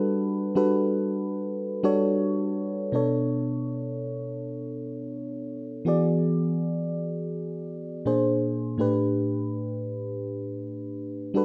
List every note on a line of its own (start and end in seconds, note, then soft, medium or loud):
0.00 0.38 G3 loud
0.00 0.38 D4 medium
0.00 0.38 F#4 medium
0.00 0.38 A4 medium
0.00 0.38 B4 loud
0.55 1.46 G3 medium
0.55 1.46 D4 medium
0.55 1.46 F#4 medium
0.55 1.47 A4 medium
0.55 1.47 B4 loud
1.83 2.61 G3 medium
1.83 2.61 D4 medium
1.83 2.62 F#4 medium
1.83 2.62 A4 medium
1.83 2.62 C#5 loud
2.92 5.82 B2 medium
2.92 5.82 B3 medium
2.92 5.83 D4 medium
2.92 5.83 A4 medium
2.92 5.83 C#5 medium
5.85 8.01 E3 medium
5.85 8.02 B3 medium
5.85 8.02 F#4 medium
5.85 8.03 G#4 medium
5.85 8.03 D5 medium
8.05 8.79 A#2 medium
8.05 8.79 A#3 medium
8.05 8.78 D4 medium
8.05 8.80 G#4 medium
8.05 8.80 C5 medium
8.78 11.31 A2 medium
8.78 11.31 A3 medium
8.78 11.32 D4 medium
8.78 11.32 G4 medium
8.78 11.32 B4 medium
11.34 11.45 G3 medium
11.34 11.45 D4 medium
11.34 11.45 F#4 medium
11.34 11.45 A4 medium
11.34 11.45 B4 medium